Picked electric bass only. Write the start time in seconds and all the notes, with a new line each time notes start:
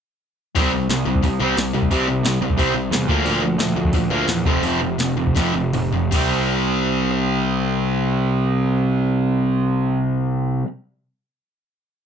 0.56 C2
0.89 C2
1.06 C2
1.24 C2
1.40 C2
1.57 C2
1.75 C2
1.91 C2
2.24 C2
2.40 C2
2.59 C2
2.75 C2
2.91 E2
3.09 D2
3.25 D2
3.59 D2
3.76 D2
3.94 D2
4.10 D2
4.28 E2
4.46 F1
4.63 F1
4.99 F1
5.16 F1
5.36 F1
5.54 F1
5.74 F1
5.93 F1
6.12 C2